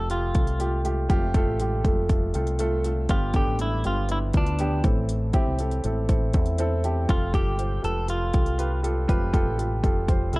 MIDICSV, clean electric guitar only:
0, 0, Header, 1, 2, 480
1, 0, Start_track
1, 0, Tempo, 499584
1, 1053, Time_signature, 4, 2, 24, 8
1, 9989, End_track
2, 0, Start_track
2, 0, Title_t, "Clean electric guitar"
2, 0, Program_c, 0, 27
2, 0, Note_on_c, 0, 69, 75
2, 101, Note_off_c, 0, 69, 0
2, 105, Note_on_c, 0, 65, 66
2, 781, Note_off_c, 0, 65, 0
2, 2985, Note_on_c, 0, 65, 82
2, 3226, Note_off_c, 0, 65, 0
2, 3230, Note_on_c, 0, 67, 91
2, 3446, Note_off_c, 0, 67, 0
2, 3474, Note_on_c, 0, 64, 80
2, 3710, Note_off_c, 0, 64, 0
2, 3716, Note_on_c, 0, 65, 77
2, 3951, Note_off_c, 0, 65, 0
2, 3956, Note_on_c, 0, 64, 75
2, 4017, Note_off_c, 0, 64, 0
2, 4201, Note_on_c, 0, 62, 63
2, 4635, Note_off_c, 0, 62, 0
2, 6825, Note_on_c, 0, 65, 68
2, 7057, Note_off_c, 0, 65, 0
2, 7061, Note_on_c, 0, 67, 84
2, 7535, Note_off_c, 0, 67, 0
2, 7539, Note_on_c, 0, 69, 81
2, 7777, Note_off_c, 0, 69, 0
2, 7781, Note_on_c, 0, 65, 68
2, 8457, Note_off_c, 0, 65, 0
2, 9956, Note_on_c, 0, 65, 66
2, 9989, Note_off_c, 0, 65, 0
2, 9989, End_track
0, 0, End_of_file